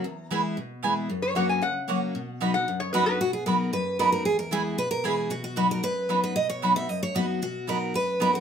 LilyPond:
<<
  \new Staff \with { instrumentName = "Resonator guitar played with a steel bar" } { \time 4/4 \key b \major \tempo 4 = 228 ais''4 r2. | r8 cis''8 fis''8 gis''8 fis''2~ | fis''4 r8 fis''4 cis''8 b'8 b'8 | r1 |
r1 | r1 | r1 | r1 | }
  \new Staff \with { instrumentName = "Steel-string acoustic guitar" } { \time 4/4 \key b \major r1 | r1 | r2. fis'4 | fis'8 gis'8 ais'4 b'4 ais'8 ais'8 |
gis'8 ais'8 gis'4 b'8 ais'8 gis'4 | fis'8 fis'8 fis'8 ais'8 b'4. b'8 | dis''8 cis''4 e''8 dis''8 cis''8 fis'4 | fis'4 ais'4 b'4 ais'8 ais'8 | }
  \new Staff \with { instrumentName = "Mandolin" } { \time 4/4 \key b \major r4 <b e' b' gis''>8 r4. <b e' b' gis''>8 r8 | r4 <ais fis' cis'' fis''>8 r4. <ais fis' cis'' fis''>8 r8 | r4 <b fis' dis'' b''>8 r4. <b fis' dis'' b''>8 r8 | r4 <b fis' dis'' b''>8 r4. <b fis' dis'' b''>8 r8 |
r4 <b e' b' gis''>8 r4. <b e' b' gis''>8 r8 | r4 <b fis' dis'' b''>8 r4. <b fis' dis'' b''>8 r8 | r4 <b fis' dis'' b''>8 r4. <b fis' dis'' b''>8 r8 | r4 <b fis' dis'' b''>8 r4. <b fis' dis'' b''>8 r8 | }
  \new Staff \with { instrumentName = "Steel-string acoustic guitar" } { \time 4/4 \key b \major << { r4 <e gis b e'>4 r4 <e gis b e'>4 | r4 <fis ais cis' fis'>4 r4 <fis ais cis' fis'>4 | r4 <fis b dis' fis'>8 <dis' fis'>8 r4 <fis b dis' fis'>4 | r4 <fis b dis' fis'>4 r4 <fis b dis' fis'>4 |
r4 <e gis b e'>4 r4 <e gis b e'>4 | r4 <fis b dis' fis'>4 r4 <fis b dis' fis'>4 | r4 <fis b dis' fis'>8 <dis' fis'>8 r4 <fis b dis' fis'>4 | r4 <fis b dis' fis'>4 r4 <fis b dis' fis'>8 <dis' fis'>8 | } \\ { e,2 b,2 | fis,2 cis2 | b,2 fis,2 | b,2 fis,2 |
e,2 b,2 | b,2 fis,2 | b,2 fis,2 | b,2 fis,2 | } >> }
>>